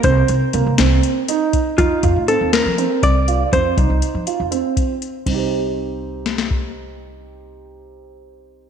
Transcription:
<<
  \new Staff \with { instrumentName = "Hollow-body jazz guitar" } { \time 7/8 \key c \dorian \tempo 4 = 121 c''2. r8 | f'4 a'8 bes'4 d''4 | c''2~ c''8 r4 | r2. r8 |
r2. r8 | }
  \new Staff \with { instrumentName = "Grand piano" } { \time 7/8 \key c \dorian c'4 bes8 c'4 ees'4 | ees'8 f'8 c'4 c'4 f'8 | c'8 ees'4 f'8 c'4 r8 | <c' ees' g' c''>2.~ <c' ees' g' c''>8~ |
<c' ees' g' c''>2.~ <c' ees' g' c''>8 | }
  \new Staff \with { instrumentName = "Upright bass" } { \clef bass \time 7/8 \key c \dorian c,8 c,16 r16 c,16 c,16 c,8 r4. | f,16 r16 f,16 a,8 ees,8 f8 r16 c,4 | f,8 c,16 c,16 r16 f16 r16 f,8 r4 r16 | c,2.~ c,8~ |
c,2.~ c,8 | }
  \new DrumStaff \with { instrumentName = "Drums" } \drummode { \time 7/8 <hh bd>8 hh8 hh8 <hh sn>8 hh8 hh8 <hh bd>8 | <hh bd>8 <hh bd>8 hh8 <hh sn>8 hh8 <hh bd>8 hh8 | <hh bd>8 <hh bd>8 hh8 hh8 hh8 <hh bd>8 hh8 | <bd cymr>4. r8 sn16 sn16 bd4 |
r4. r4 r4 | }
>>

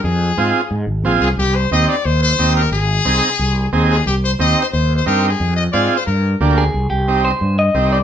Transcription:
<<
  \new Staff \with { instrumentName = "Clean electric guitar" } { \time 4/4 \key c \minor \tempo 4 = 179 r1 | r1 | r1 | r1 |
r2. r8 aes'8~ | aes'8 g'4 c''4 ees''4 d''8 | }
  \new Staff \with { instrumentName = "Trumpet" } { \time 4/4 \key c \minor aes'2 r4. aes'8 | g'8 c''8 ees''8 d''8 c''8 c''4 bes'8 | aes'2. r8 aes'8 | g'8 c''8 \tuplet 3/2 { ees''4 c''8 c''4 c''8 bes'4 aes'8~ } |
aes'8 ees''8 \tuplet 3/2 { d''4 c''8 } bes'4 r4 | r1 | }
  \new Staff \with { instrumentName = "Transistor combo organ" } { \time 4/4 \key c \minor r4 <c' f' aes'>8 r4. <c' f' aes'>8 r8 | r4 <c' ees' g'>8 r4. <c' ees' g'>8 r8 | r4 <c' ees' aes'>8 r4. <c' ees' aes'>8 r8 | r4 <c' ees' g'>8 r4. <c' ees' g'>8 r8 |
r4 <c' f' aes'>8 r4. <bes d' g'>8 r8 | r4 <c' ees' g'>8 r4. <c' ees' g'>8 r8 | }
  \new Staff \with { instrumentName = "Fretless electric bass" } { \clef bass \time 4/4 \key c \minor f,4 aes,8 r8 aes,8 aes,,8 bes,,8 c,8 | c,4 ees,8 r8 ees,4 ees,4 | aes,,4 c,8 r8 c,4 ees,4 | c,4 ees,8 r8 ees,4 g,4 |
f,4 aes,8 r8 g,4 d,4 | c,8 c,4. g,4 c,4 | }
>>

